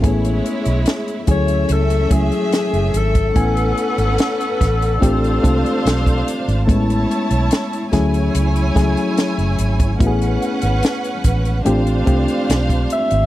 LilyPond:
<<
  \new Staff \with { instrumentName = "String section" } { \time 4/4 \key a \major \tempo 4 = 72 <gis e' cis''>4. <a cis' e''>2~ <a cis' e''>8 | <cis' b' fis''>2 <d' c'' f''>2 | <e' cis'' a''>4. <e' cis'' gis''>2~ <e' cis'' gis''>8 | <cis' b' fis''>2 <d' c'' f''>2 | }
  \new Staff \with { instrumentName = "Alto saxophone" } { \time 4/4 \key a \major r4. cis''8 a'8 gis'4 a'8~ | a'2.~ a'8 r8 | r1 | r2. r8 e''8 | }
  \new Staff \with { instrumentName = "Reed electric piano" } { \time 4/4 \key a \major <a b cis' e' gis'>4. <fis a cis' e' gis'>4 <fis a cis' e' gis'>4 r8 | <a b cis' e' gis''>4. r8 <a c' d' f' g'>8 <a c' d' f' a'>4 r8 | <gis a b cis' e'>4. <fis a cis' e' gis'>4 <fis a cis' e' gis'>4 r8 | <a b cis' e' fis' gis'>4. r8 <a c' d' f' g'>8 <a c' d' f' g'>4 r8 | }
  \new Staff \with { instrumentName = "Fingered electric bass" } { \clef bass \time 4/4 \key a \major a,,8 r16 b,,16 r8 d,8 cis,8 cis,16 r8 fis,,16 gis,,8 | a,,8 r16 gis,,16 r8 a,,8 a,,8 c,16 r16 b,,8 r16 gis,,16 | a,,8 r16 b,,16 r8 d,8 cis,8 cis,16 r8 fis,,16 gis,,8 | a,,8 r16 gis,,16 r8 a,,8 a,,8 c,16 r16 b,,8 r16 gis,,16 | }
  \new DrumStaff \with { instrumentName = "Drums" } \drummode { \time 4/4 <hh bd>16 hh16 hh16 hh16 <hh sn>16 hh16 <hh bd>16 hh16 hh16 hh16 <hh bd>16 hh16 <hh sn>16 hh16 hh16 <hh bd>16 | <hh bd>16 hh16 hh16 hh16 <hh sn>16 hh16 <hh bd sn>16 hh16 <hh bd>16 hh16 <hh bd>16 hh16 <hh sn>16 <hh bd>16 hh16 hh16 | <hh bd>16 hh16 hh16 hh16 <hh sn>16 hh16 <hh bd sn>16 hh16 hh16 hh16 <hh bd sn>16 hh16 <hh sn>16 hh16 hh16 <hh bd>16 | <hh bd>16 hh16 hh16 hh16 <hh sn>16 hh16 <hh bd>16 hh16 hh16 hh16 <hh bd>16 hh16 <hh sn>16 <hh bd>16 hh16 hh16 | }
>>